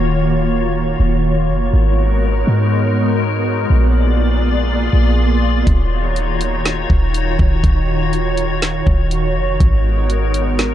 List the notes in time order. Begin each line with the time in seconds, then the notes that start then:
Already playing: D#1 D#3 A#3 F4 F#4 C#5
1.00 D#1
1.49 F1
1.73 G#1 G#3 B3 D#4 F#4 A#4
2.47 G#2
3.70 A#1 A#3 F4 G#4 D5
4.93 A#1
5.67 D#1 D#3 D#4 F#4 C#5, kick, closed hi-hat
6.16 closed hi-hat
6.41 closed hi-hat
6.65 snare, closed hi-hat
6.90 D#1, kick
7.14 closed hi-hat
7.39 D#1, kick
7.64 D#1, kick, closed hi-hat
8.13 closed hi-hat
8.37 closed hi-hat
8.62 snare, closed hi-hat
8.87 D#1, kick
9.11 closed hi-hat
9.36 F1
9.60 G#1 G#3 B3 D#4 A#4, kick, closed hi-hat
10.10 closed hi-hat
10.34 closed hi-hat
10.59 snare, closed hi-hat